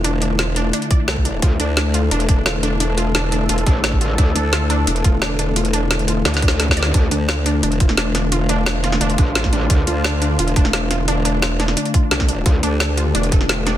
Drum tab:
HH |x-----x-----x-----x-----x--x--x-----x-----x-----|x-----x-----x-----x-----x--x--x-----x-----x-----|x-----x-----x-----x-----x--x--x-----x-----x-----|x-----x-----x-----x-----x--x--x-----x-----x-----|
SD |------------o-----------------------o-----------|------------o-----------------------o-----------|------------o-----------------------o-----------|------------o-----------------------o-----------|
BD |------------------------------o--------o--------|o-----------------------------o-----------------|------------------------------o--------o--------|o-----------------------------o-----------------|

HH |x--x--x-----x--x--x-----x--x--x-----x-----x-----|x-----x-----x-----x-----x--x--x-----x-----x-----|x-----x-----x-----x-----x--x--x-----x-----x-----|x-----x-----x-----x-----x--x--x-----x-----x-----|
SD |------------o-----------o---o---o---o---o---o---|------------o--------------------o--o-----o-----|------------o-----o--o--------------o--o--------|------------o--------------------o--o-----o-----|
BD |------------------------------o--------o--------|o-----------------------------o-----------------|------------------------------o--------o--------|o-----------------------------o-----------------|

HH |x-----x-----x-----x-----x--x--x-----x-----x-----|x-----x-----x-----x-----x--x--x-----x-----x-----|
SD |------------o-----o--o--------------o--o--------|------------o--------------------o--o-----o-----|
BD |------------------------------o--------o--------|o-----------------------------o-----------------|